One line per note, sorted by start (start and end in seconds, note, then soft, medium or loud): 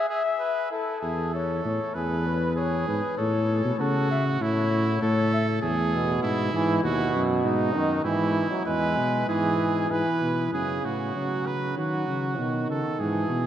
0.08 0.23 G#4 medium
0.08 0.70 E5 medium
0.39 0.70 B4 medium
0.71 1.00 E4 medium
0.71 1.30 A4 medium
1.01 1.61 E2 medium
1.01 1.35 G#4 medium
1.33 1.96 A4 medium
1.33 1.64 C#5 medium
1.65 1.79 A2 medium
1.65 1.95 C#5 medium
1.94 2.86 E2 medium
1.94 2.26 G#4 medium
1.94 2.56 B4 medium
2.27 2.59 B4 medium
2.56 3.17 G#4 medium
2.56 2.87 C#5 medium
2.88 3.01 G#2 medium
2.88 3.20 B4 medium
3.18 3.64 A2 medium
3.18 3.78 A4 medium
3.18 3.82 C#5 medium
3.65 3.71 B2 medium
3.80 4.39 C#3 medium
3.80 4.44 F#4 medium
3.80 4.10 A4 medium
4.11 4.25 E5 medium
4.40 5.00 A2 medium
4.40 5.01 E4 medium
4.40 5.01 C#5 medium
5.01 5.61 A2 medium
5.01 5.61 A4 medium
5.01 5.32 C#5 medium
5.33 5.47 E5 medium
5.62 6.21 E2 medium
5.62 6.21 G#4 medium
5.92 6.48 B2 medium
6.23 6.52 G#2 medium
6.23 6.82 E4 medium
6.53 6.83 G#2 medium
6.53 6.83 E3 medium
6.83 7.13 D#2 medium
6.83 7.76 B2 loud
6.83 7.22 F#4 medium
7.14 7.46 F#2 medium
7.45 7.74 G#2 medium
7.45 8.01 D#4 medium
7.75 8.04 F#2 medium
7.75 8.04 D#3 medium
8.04 8.43 G#2 medium
8.04 8.50 E3 medium
8.04 8.64 E4 medium
8.50 8.65 F#3 medium
8.66 8.99 E2 medium
8.66 9.27 G#3 medium
8.66 9.27 B4 medium
8.97 9.28 B2 medium
9.28 9.89 G#2 medium
9.28 9.89 E3 medium
9.28 9.92 G#4 medium
9.90 10.04 G#2 medium
9.90 10.52 E3 medium
9.90 10.52 B4 medium
10.22 10.52 B2 medium
10.53 10.82 F#2 medium
10.53 11.12 C#3 medium
10.53 10.86 G#4 medium
10.84 11.15 A2 medium
10.84 11.48 F#4 medium
11.15 11.76 C#3 medium
11.15 11.76 F#3 medium
11.47 11.77 B4 medium
11.77 12.07 D#3 medium
11.77 12.40 F#3 medium
11.77 12.68 F#4 medium
12.08 12.38 C#3 medium
12.38 12.68 B2 medium
12.38 13.02 D#3 medium
12.69 12.83 C#3 medium
12.69 13.01 A4 medium
12.99 13.29 G#2 medium
12.99 13.44 E3 medium
12.99 13.47 G#4 medium
13.30 13.47 B2 medium